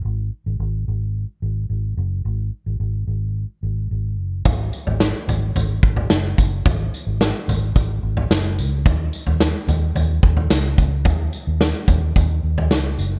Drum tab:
TB |----------------|----------------|x-x-x-x-x---x-x-|x-x-x-x-x---x-x-|
SD |----------------|----------------|----o-------o---|----o-------o---|
FT |----------------|----------------|o--o--o-o--o----|o-----o-o--o----|
BD |----------------|----------------|o---------o---o-|o-------o-------|

TB |x-x-x-x-x---x-x-|x-x-x-x-x---x-x-|
SD |----o-------o---|----o-------o---|
FT |o--o--o-o--o----|o-----o-o--o----|
BD |o---------o---o-|o-----o-o-------|